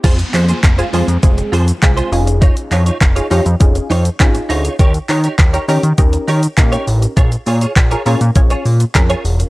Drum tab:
CC |x---------------|----------------|----------------|----------------|
HH |xxoxxxoxxxoxxxox|xxoxxxoxxxoxxxox|xxoxxxoxxxoxxxox|xxoxxxoxxxoxxxox|
SH |xxxxxxxxxxxxxxxx|xxxxxxxxxxxxxxxx|xxxxxxxxxxxxxxxx|xxxxxxxxxxxxxxxx|
CP |--x-x-------x---|--x-x-------x---|--x-x-------x---|----x-------x---|
BD |o---o---o---o---|o---o---o---o---|o---o---o---o---|o---o---o---o---|